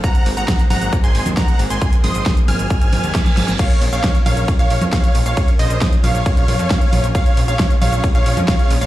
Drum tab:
CC |----------------|----------------|x---------------|----------------|
RD |----------------|----------------|x---x---x---x---|x---x---x---x---|
HH |xxoxxxoxxxoxxxox|xxoxxxoxxxoxxxox|xxoxxxoxxxoxxxox|xxoxxxoxxxoxxxox|
SH |xx-xxx-xxx-xxx-x|xx-xxx-xxx-xxx-x|xx-xxx-xxx-xxx-x|xx-xxx-xxx-xxx-x|
SD |----o-------o---|----o-------oooo|----o-------o---|----o-------o---|
CG |------o----o----|--o---o---o---o-|------o----o----|------o---o---o-|
BD |o---o---o---o---|o---o---o---o---|o---o---o---o---|o---o---o---o---|

CC |----------------|
RD |x---x---x---x---|
HH |xxoxxxoxxxoxxxox|
SH |xx-xxx-xxx-xxx-x|
SD |----o-------o---|
CG |------o----o----|
BD |o---o---o---o---|